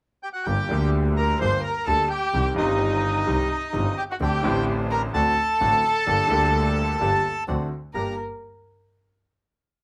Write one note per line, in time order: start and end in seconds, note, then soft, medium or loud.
0.23 0.29 G4 medium
0.23 0.28 G5 medium
0.33 0.46 F#4 soft
0.33 0.45 F#5 medium
0.44 0.67 G1 soft
0.44 0.67 G2 soft
0.44 0.67 D3 soft
0.44 0.66 G3 soft
0.44 0.67 A#3 soft
0.44 0.90 G4 medium
0.44 0.91 G4 medium
0.44 0.67 G4 soft
0.44 0.89 G5 medium
0.69 1.37 D2 medium
0.69 1.38 D2 medium
0.69 0.70 D3 medium
0.69 1.38 D3 medium
0.69 1.37 G3 medium
0.69 1.38 A#3 medium
0.69 1.39 G4 medium
1.17 1.39 A#4 medium
1.17 1.40 A#4 medium
1.17 1.39 A#5 medium
1.41 1.61 G1 soft
1.41 1.61 G2 soft
1.41 1.61 D3 soft
1.41 1.61 G3 soft
1.41 1.61 A#3 soft
1.41 1.61 G4 soft
1.41 1.63 C5 medium
1.41 1.63 C6 medium
1.63 1.86 A#4 medium
1.63 1.88 A#5 medium
1.86 2.07 D2 soft
1.86 2.07 D3 soft
1.86 2.08 G3 soft
1.86 2.07 A#3 soft
1.86 2.07 G4 soft
1.86 2.09 A4 medium
1.86 2.10 A4 medium
1.86 2.09 A5 medium
2.10 2.54 G4 medium
2.10 2.55 G4 medium
2.10 2.54 G5 medium
2.33 2.54 C2 soft
2.33 2.54 C3 soft
2.33 2.52 D#3 soft
2.33 2.54 G3 soft
2.33 2.54 C4 soft
2.33 2.54 G4 soft
2.54 3.24 G1 medium
2.54 3.24 G2 medium
2.54 3.23 D#3 medium
2.54 3.23 G3 medium
2.54 3.24 C4 medium
2.54 3.94 D#4 medium
2.54 4.02 D#5 medium
2.58 3.94 D#4 medium
2.58 3.25 G4 medium
3.26 3.47 C2 soft
3.26 3.48 C2 soft
3.26 3.47 C3 soft
3.26 3.47 D#3 soft
3.26 3.47 G3 soft
3.26 3.47 C4 soft
3.26 3.47 G4 soft
3.73 3.94 G1 soft
3.73 3.94 G2 soft
3.73 3.93 D#3 soft
3.73 3.93 G3 soft
3.73 3.94 C4 soft
3.73 3.94 G4 soft
3.97 4.03 G4 medium
3.97 4.04 G4 medium
3.97 4.04 G5 medium
4.10 4.15 F#4 soft
4.10 4.16 F#4 medium
4.10 4.17 F#5 medium
4.20 4.40 D2 soft
4.20 4.40 D2 medium
4.20 4.40 D3 soft
4.20 4.40 A3 soft
4.20 4.40 C4 soft
4.20 4.41 C4 soft
4.20 4.41 D4 soft
4.20 4.41 G4 soft
4.20 4.65 G4 medium
4.20 4.65 G5 medium
4.43 5.11 A1 medium
4.43 5.11 A2 medium
4.43 5.10 D3 medium
4.43 5.10 A3 medium
4.43 5.10 C4 medium
4.43 5.11 C4 medium
4.43 5.10 D4 medium
4.43 5.10 G4 medium
4.47 5.12 G4 medium
4.91 5.01 A#4 medium
4.91 5.02 A#4 medium
4.91 5.02 A#5 medium
5.14 5.34 D2 soft
5.14 5.34 D3 soft
5.14 5.34 A3 soft
5.14 5.33 C4 soft
5.14 5.34 C4 soft
5.14 5.33 D4 soft
5.14 5.34 F#4 soft
5.14 7.43 A4 medium
5.14 7.44 A4 medium
5.14 7.43 A5 medium
5.60 5.81 A1 soft
5.60 5.81 A2 soft
5.60 5.81 D3 soft
5.60 5.80 A3 soft
5.60 5.80 C4 soft
5.60 5.81 C4 soft
5.60 5.80 D4 soft
5.60 5.80 F#4 soft
5.60 5.81 F#4 soft
6.06 6.27 G1 soft
6.06 6.27 G1 medium
6.06 6.27 G2 soft
6.06 6.26 D3 soft
6.06 6.26 G3 soft
6.06 6.27 A#3 soft
6.06 6.27 D4 soft
6.06 6.27 G4 soft
6.30 6.97 D2 medium
6.30 6.97 D3 medium
6.30 6.97 G3 medium
6.30 6.97 A#3 medium
6.30 6.97 D4 medium
6.30 6.97 G4 medium
6.30 6.98 G4 medium
7.00 7.21 G1 soft
7.00 7.21 G2 soft
7.00 7.21 D3 soft
7.00 7.21 G3 soft
7.00 7.20 A#3 soft
7.00 7.21 A#3 soft
7.00 7.20 D4 soft
7.00 7.20 G4 soft
7.00 7.21 G4 soft
7.47 7.68 D2 soft
7.47 7.68 D3 soft
7.47 7.68 A3 soft
7.47 7.67 C4 soft
7.47 7.68 C4 soft
7.47 7.67 D4 soft
7.47 7.67 F#4 soft
7.47 7.68 F#4 soft
7.94 8.14 G1 soft
7.94 8.14 G2 soft
7.94 8.13 A#3 soft
7.94 8.14 A#3 soft
7.94 8.13 D4 soft
7.94 8.14 D4 soft
7.94 8.13 G4 soft
7.94 8.14 G4 soft
7.94 8.16 A#4 medium
7.94 8.16 A#5 medium